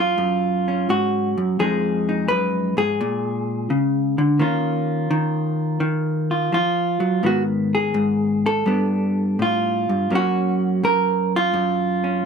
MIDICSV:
0, 0, Header, 1, 2, 480
1, 0, Start_track
1, 0, Tempo, 705882
1, 1083, Time_signature, 4, 2, 24, 8
1, 4438, Tempo, 714286
1, 8287, End_track
2, 0, Start_track
2, 0, Title_t, "Hollow-body jazz guitar"
2, 0, Program_c, 0, 26
2, 0, Note_on_c, 0, 42, 60
2, 0, Note_on_c, 0, 54, 39
2, 0, Note_on_c, 0, 58, 31
2, 0, Note_on_c, 0, 61, 40
2, 0, Note_on_c, 0, 65, 77
2, 112, Note_off_c, 0, 42, 0
2, 120, Note_on_c, 0, 42, 59
2, 454, Note_off_c, 0, 61, 0
2, 462, Note_on_c, 0, 61, 37
2, 603, Note_off_c, 0, 42, 0
2, 606, Note_on_c, 0, 44, 52
2, 610, Note_off_c, 0, 65, 0
2, 612, Note_on_c, 0, 66, 83
2, 932, Note_off_c, 0, 44, 0
2, 935, Note_on_c, 0, 42, 60
2, 1070, Note_off_c, 0, 54, 0
2, 1071, Note_off_c, 0, 58, 0
2, 1072, Note_off_c, 0, 61, 0
2, 1081, Note_off_c, 0, 42, 0
2, 1084, Note_on_c, 0, 41, 57
2, 1085, Note_off_c, 0, 66, 0
2, 1088, Note_on_c, 0, 68, 81
2, 1089, Note_on_c, 0, 53, 41
2, 1094, Note_on_c, 0, 56, 43
2, 1102, Note_on_c, 0, 63, 42
2, 1411, Note_off_c, 0, 63, 0
2, 1420, Note_on_c, 0, 63, 46
2, 1550, Note_off_c, 0, 68, 0
2, 1553, Note_on_c, 0, 71, 91
2, 1560, Note_off_c, 0, 41, 0
2, 1564, Note_on_c, 0, 42, 59
2, 1880, Note_off_c, 0, 42, 0
2, 1883, Note_off_c, 0, 71, 0
2, 1883, Note_on_c, 0, 44, 62
2, 1890, Note_on_c, 0, 68, 84
2, 2022, Note_off_c, 0, 53, 0
2, 2024, Note_off_c, 0, 63, 0
2, 2036, Note_off_c, 0, 44, 0
2, 2044, Note_on_c, 0, 46, 65
2, 2514, Note_off_c, 0, 46, 0
2, 2517, Note_on_c, 0, 49, 56
2, 2841, Note_off_c, 0, 49, 0
2, 2844, Note_on_c, 0, 50, 59
2, 2988, Note_on_c, 0, 51, 58
2, 2991, Note_off_c, 0, 56, 0
2, 2994, Note_on_c, 0, 58, 35
2, 2996, Note_off_c, 0, 50, 0
2, 2998, Note_off_c, 0, 68, 0
2, 3000, Note_on_c, 0, 61, 45
2, 3003, Note_on_c, 0, 65, 45
2, 3464, Note_off_c, 0, 51, 0
2, 3472, Note_on_c, 0, 51, 73
2, 3938, Note_off_c, 0, 51, 0
2, 3946, Note_on_c, 0, 51, 62
2, 4283, Note_off_c, 0, 65, 0
2, 4291, Note_on_c, 0, 65, 44
2, 4434, Note_off_c, 0, 51, 0
2, 4436, Note_on_c, 0, 53, 56
2, 4441, Note_off_c, 0, 65, 0
2, 4449, Note_on_c, 0, 65, 74
2, 4754, Note_off_c, 0, 53, 0
2, 4757, Note_on_c, 0, 54, 60
2, 4899, Note_off_c, 0, 58, 0
2, 4903, Note_off_c, 0, 61, 0
2, 4911, Note_on_c, 0, 44, 63
2, 4912, Note_off_c, 0, 54, 0
2, 4914, Note_on_c, 0, 51, 46
2, 4920, Note_on_c, 0, 59, 46
2, 4923, Note_off_c, 0, 65, 0
2, 4933, Note_on_c, 0, 66, 81
2, 5041, Note_off_c, 0, 66, 0
2, 5258, Note_on_c, 0, 68, 82
2, 5381, Note_off_c, 0, 44, 0
2, 5389, Note_on_c, 0, 44, 67
2, 5732, Note_off_c, 0, 68, 0
2, 5740, Note_on_c, 0, 69, 85
2, 5856, Note_off_c, 0, 44, 0
2, 5861, Note_off_c, 0, 59, 0
2, 5869, Note_on_c, 0, 43, 55
2, 5870, Note_off_c, 0, 51, 0
2, 5873, Note_on_c, 0, 55, 41
2, 5880, Note_on_c, 0, 59, 42
2, 5883, Note_on_c, 0, 62, 35
2, 6359, Note_off_c, 0, 43, 0
2, 6363, Note_on_c, 0, 45, 50
2, 6371, Note_off_c, 0, 69, 0
2, 6383, Note_on_c, 0, 65, 79
2, 6696, Note_off_c, 0, 45, 0
2, 6700, Note_on_c, 0, 43, 54
2, 6827, Note_off_c, 0, 55, 0
2, 6831, Note_off_c, 0, 62, 0
2, 6832, Note_off_c, 0, 59, 0
2, 6839, Note_off_c, 0, 43, 0
2, 6842, Note_on_c, 0, 42, 57
2, 6848, Note_on_c, 0, 54, 37
2, 6851, Note_on_c, 0, 58, 35
2, 6858, Note_off_c, 0, 65, 0
2, 6860, Note_on_c, 0, 61, 44
2, 6875, Note_on_c, 0, 66, 84
2, 7325, Note_off_c, 0, 42, 0
2, 7333, Note_on_c, 0, 42, 67
2, 7339, Note_off_c, 0, 66, 0
2, 7341, Note_on_c, 0, 70, 91
2, 7661, Note_off_c, 0, 70, 0
2, 7688, Note_on_c, 0, 65, 87
2, 7796, Note_off_c, 0, 42, 0
2, 7804, Note_on_c, 0, 42, 62
2, 8134, Note_off_c, 0, 61, 0
2, 8142, Note_on_c, 0, 61, 40
2, 8273, Note_off_c, 0, 42, 0
2, 8287, Note_off_c, 0, 54, 0
2, 8287, Note_off_c, 0, 58, 0
2, 8287, Note_off_c, 0, 61, 0
2, 8287, Note_off_c, 0, 65, 0
2, 8287, End_track
0, 0, End_of_file